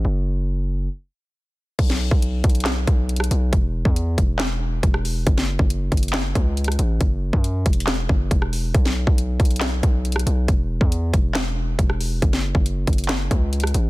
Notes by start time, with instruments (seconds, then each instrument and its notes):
0.05 808-style bass F#1
1.79 808-style bass B1, kick, closed hi-hat, crash
1.90 snare
2.11 808-style bass B1, kick
2.22 closed hi-hat
2.44 808-style bass B1, kick, closed hi-hat
2.49 closed hi-hat
2.55 closed hi-hat
2.60 closed hi-hat
2.65 cross-stick, snare, clap, closed hi-hat
2.87 808-style bass B1, kick, closed hi-hat
3.09 closed hi-hat
3.16 cross-stick, closed hi-hat
3.24 closed hi-hat
3.31 808-style bass B1, closed hi-hat
3.53 808-style bass E1, kick, closed hi-hat
3.85 808-style bass E2, kick
3.96 closed hi-hat
4.18 808-style bass E1, kick, closed hi-hat
4.39 cross-stick, snare, clap, closed hi-hat
4.83 808-style bass E1, kick, closed hi-hat
4.94 cross-stick
5.05 open hi-hat
5.27 808-style bass F#1, kick, closed hi-hat
5.38 snare
5.59 808-style bass F#1, kick
5.70 closed hi-hat
5.92 808-style bass F#1, kick, closed hi-hat
5.97 closed hi-hat
6.03 closed hi-hat
6.08 closed hi-hat
6.13 cross-stick, snare, clap, closed hi-hat
6.35 808-style bass C#2, kick, closed hi-hat
6.57 closed hi-hat
6.64 cross-stick, closed hi-hat
6.72 closed hi-hat
6.79 808-style bass A1, closed hi-hat
7.01 808-style bass F#1, kick, closed hi-hat
7.33 808-style bass F#2, kick
7.44 closed hi-hat
7.66 808-style bass E1, kick, closed hi-hat
7.73 closed hi-hat
7.80 closed hi-hat
7.87 cross-stick, snare, clap, closed hi-hat
8.09 808-style bass F#1, kick
8.31 808-style bass E1, kick, closed hi-hat
8.42 cross-stick
8.53 open hi-hat
8.74 808-style bass B1, kick, closed hi-hat
8.85 snare
9.07 808-style bass B1, kick
9.18 closed hi-hat
9.40 808-style bass B1, kick, closed hi-hat
9.45 closed hi-hat
9.51 closed hi-hat
9.56 closed hi-hat
9.61 cross-stick, snare, clap, closed hi-hat
9.83 808-style bass B1, kick, closed hi-hat
10.05 closed hi-hat
10.12 cross-stick, closed hi-hat
10.19 closed hi-hat
10.27 808-style bass B1, closed hi-hat
10.48 808-style bass E1, kick, closed hi-hat
10.81 808-style bass E2, kick
10.92 closed hi-hat
11.14 808-style bass E1, kick, closed hi-hat
11.35 cross-stick, snare, clap, closed hi-hat
11.79 808-style bass E1, kick, closed hi-hat
11.90 cross-stick
12.01 open hi-hat
12.22 808-style bass F#1, kick, closed hi-hat
12.33 snare
12.55 808-style bass F#1, kick
12.66 closed hi-hat
12.87 808-style bass F#1, kick, closed hi-hat
12.93 closed hi-hat
12.98 closed hi-hat
13.04 closed hi-hat
13.09 cross-stick, snare, clap, closed hi-hat
13.31 808-style bass C#2, kick, closed hi-hat
13.53 closed hi-hat
13.60 cross-stick, closed hi-hat
13.67 closed hi-hat
13.74 808-style bass A1, closed hi-hat